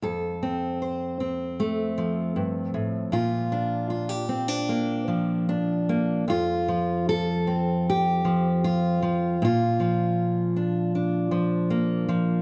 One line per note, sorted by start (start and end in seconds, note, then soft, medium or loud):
0.02 2.36 F2 medium
0.02 0.81 A4 medium
0.43 1.19 C4 soft
0.82 3.09 C5 soft
1.20 3.13 C4 soft
1.60 3.09 A3 medium
1.98 4.12 F3 medium
2.36 2.74 G2 medium
2.74 3.13 A2 medium
3.12 6.27 A#2 medium
3.12 3.89 F4 medium
3.52 4.28 D4 medium
3.90 4.09 F4 soft
4.09 6.27 G4 soft
4.29 4.48 C4 medium
4.48 5.47 D4 medium
4.69 5.88 A#3 medium
5.08 6.23 F3 medium
5.49 6.24 D4 medium
5.89 6.24 A#3 medium
6.28 9.41 F2 medium
6.28 7.08 F4 medium
6.68 8.23 F3 medium
7.09 7.87 A4 medium
7.47 9.41 C4 soft
7.90 8.64 G4 medium
8.25 9.01 F3 medium
8.64 9.41 F4 medium
9.02 9.36 F3 medium
9.42 12.42 A#2 medium
9.42 12.42 F4 medium
9.80 11.30 F3 medium
10.56 10.95 D4 soft
10.95 12.42 D4 soft
11.31 12.08 F3 medium
11.70 12.42 A#3 soft
12.09 12.42 F3 medium